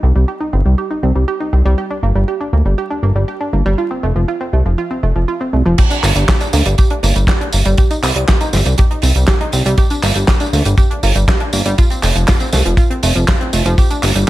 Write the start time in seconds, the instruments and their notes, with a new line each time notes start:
0.03 analog synth bass C2, synth arpeggio sound C4
0.16 analog synth bass C2, synth arpeggio sound G3
0.28 synth arpeggio sound G4
0.41 synth arpeggio sound D#4
0.53 analog synth bass G1, synth arpeggio sound C4
0.66 analog synth bass C2, synth arpeggio sound G3
0.78 synth arpeggio sound G4
0.91 synth arpeggio sound D#4
1.03 analog synth bass C2, synth arpeggio sound C4
1.15 analog synth bass C2, synth arpeggio sound G3
1.28 synth arpeggio sound G4
1.40 synth arpeggio sound D#4
1.53 analog synth bass C2, synth arpeggio sound C4
1.65 analog synth bass C2, synth arpeggio sound G3
1.78 synth arpeggio sound G4
1.91 synth arpeggio sound D4
2.03 analog synth bass G1, synth arpeggio sound A#3
2.15 analog synth bass G1, synth arpeggio sound G3
2.28 synth arpeggio sound G4
2.41 synth arpeggio sound D4
2.53 analog synth bass D2, synth arpeggio sound A#3
2.65 analog synth bass G1, synth arpeggio sound G3
2.78 synth arpeggio sound G4
2.91 synth arpeggio sound D4
3.03 analog synth bass G1, synth arpeggio sound A#3
3.15 analog synth bass G1, synth arpeggio sound G3
3.28 synth arpeggio sound G4
3.41 synth arpeggio sound D4
3.53 analog synth bass G1, synth arpeggio sound A#3
3.66 analog synth bass G1, synth arpeggio sound G3
3.78 synth arpeggio sound F4
3.91 synth arpeggio sound C4
4.03 analog synth bass F1, synth arpeggio sound A3
4.16 analog synth bass F1, synth arpeggio sound F3
4.28 synth arpeggio sound F4
4.41 synth arpeggio sound C4
4.53 analog synth bass C2, synth arpeggio sound A3
4.66 analog synth bass F1, synth arpeggio sound F3
4.78 synth arpeggio sound F4
4.91 synth arpeggio sound C4
5.03 analog synth bass F1, synth arpeggio sound A3
5.16 analog synth bass F1, synth arpeggio sound F3
5.28 synth arpeggio sound F4
5.41 synth arpeggio sound C4
5.53 analog synth bass C2, synth arpeggio sound A3
5.66 analog synth bass F1, synth arpeggio sound F3
5.78 synth arpeggio sound G4, kick, closed hi-hat, crash, tambourine
5.90 synth arpeggio sound D4, closed hi-hat, tambourine
6.03 analog synth bass G1, synth arpeggio sound A#3, clap, open hi-hat, tambourine
6.16 analog synth bass G1, synth arpeggio sound G3, closed hi-hat, tambourine
6.28 synth arpeggio sound G4, kick, snare, clap, closed hi-hat, tambourine
6.41 synth arpeggio sound D4, closed hi-hat, tambourine
6.53 analog synth bass D2, synth arpeggio sound A#3, open hi-hat, tambourine
6.65 analog synth bass G1, synth arpeggio sound G3, closed hi-hat, tambourine
6.78 synth arpeggio sound G4, kick, closed hi-hat, tambourine
6.90 synth arpeggio sound D4, closed hi-hat
7.03 analog synth bass G1, synth arpeggio sound A#3, open hi-hat, tambourine
7.16 analog synth bass G1, synth arpeggio sound G3, closed hi-hat, tambourine
7.27 synth arpeggio sound G4, kick, snare, clap, closed hi-hat, tambourine
7.41 synth arpeggio sound D4, closed hi-hat
7.52 analog synth bass G1, synth arpeggio sound A#3, open hi-hat, tambourine
7.65 analog synth bass G1, synth arpeggio sound G3, closed hi-hat, tambourine
7.77 synth arpeggio sound G4, kick, closed hi-hat, tambourine
7.91 synth arpeggio sound D#4, closed hi-hat, tambourine
8.03 analog synth bass C2, synth arpeggio sound C4, clap, open hi-hat, tambourine
8.16 analog synth bass C2, synth arpeggio sound G3, closed hi-hat, tambourine
8.28 synth arpeggio sound G4, kick, snare, clap, closed hi-hat, tambourine
8.41 synth arpeggio sound D#4, closed hi-hat, tambourine
8.53 analog synth bass G1, synth arpeggio sound C4, snare, open hi-hat, tambourine
8.66 analog synth bass C2, synth arpeggio sound G3, closed hi-hat, tambourine
8.78 synth arpeggio sound G4, kick, closed hi-hat, tambourine
8.91 synth arpeggio sound D#4, closed hi-hat
9.02 analog synth bass C2, synth arpeggio sound C4, open hi-hat, tambourine
9.15 analog synth bass C2, synth arpeggio sound G3, closed hi-hat, tambourine
9.27 synth arpeggio sound G4, kick, snare, clap, closed hi-hat, tambourine
9.41 synth arpeggio sound D#4, closed hi-hat
9.52 analog synth bass C2, synth arpeggio sound C4, open hi-hat, tambourine
9.66 analog synth bass C2, synth arpeggio sound G3, closed hi-hat, tambourine
9.78 synth arpeggio sound G4, kick, closed hi-hat, tambourine
9.90 synth arpeggio sound D4, closed hi-hat, tambourine
10.03 analog synth bass G1, synth arpeggio sound A#3, clap, open hi-hat, tambourine
10.15 analog synth bass G1, synth arpeggio sound G3, closed hi-hat, tambourine
10.28 synth arpeggio sound G4, kick, snare, clap, closed hi-hat, tambourine
10.40 synth arpeggio sound D4, closed hi-hat, tambourine
10.53 analog synth bass D2, synth arpeggio sound A#3, open hi-hat, tambourine
10.65 analog synth bass G1, synth arpeggio sound G3, closed hi-hat, tambourine
10.78 synth arpeggio sound G4, kick, closed hi-hat, tambourine
10.91 synth arpeggio sound D4, closed hi-hat
11.03 analog synth bass G1, synth arpeggio sound A#3, open hi-hat, tambourine
11.16 analog synth bass G1, synth arpeggio sound G3, closed hi-hat, tambourine
11.28 synth arpeggio sound G4, kick, snare, clap, closed hi-hat, tambourine
11.40 synth arpeggio sound D4, closed hi-hat
11.53 analog synth bass G1, synth arpeggio sound A#3, open hi-hat, tambourine
11.66 analog synth bass G1, synth arpeggio sound G3, closed hi-hat, tambourine
11.78 synth arpeggio sound F4, kick, closed hi-hat, tambourine
11.90 synth arpeggio sound C4, closed hi-hat, tambourine
12.03 analog synth bass F1, synth arpeggio sound A3, clap, open hi-hat, tambourine
12.15 analog synth bass F1, synth arpeggio sound F3, closed hi-hat, tambourine
12.28 synth arpeggio sound F4, kick, snare, clap, closed hi-hat, tambourine
12.40 synth arpeggio sound C4, closed hi-hat, tambourine
12.53 analog synth bass C2, synth arpeggio sound A3, snare, open hi-hat, tambourine
12.66 analog synth bass F1, synth arpeggio sound F3, closed hi-hat, tambourine
12.77 synth arpeggio sound F4, kick, closed hi-hat, tambourine
12.90 synth arpeggio sound C4, closed hi-hat
13.03 analog synth bass F1, synth arpeggio sound A3, open hi-hat, tambourine
13.15 analog synth bass F1, synth arpeggio sound F3, closed hi-hat, tambourine
13.28 synth arpeggio sound F4, kick, snare, clap, closed hi-hat, tambourine
13.41 synth arpeggio sound C4, closed hi-hat
13.53 analog synth bass F1, synth arpeggio sound A3, open hi-hat, tambourine
13.66 analog synth bass F1, synth arpeggio sound F3, closed hi-hat, tambourine
13.78 synth arpeggio sound G4, kick, closed hi-hat, tambourine
13.90 synth arpeggio sound D4, closed hi-hat, tambourine
14.03 analog synth bass G1, synth arpeggio sound A#3, clap, open hi-hat, tambourine
14.15 analog synth bass G1, synth arpeggio sound G3, closed hi-hat, tambourine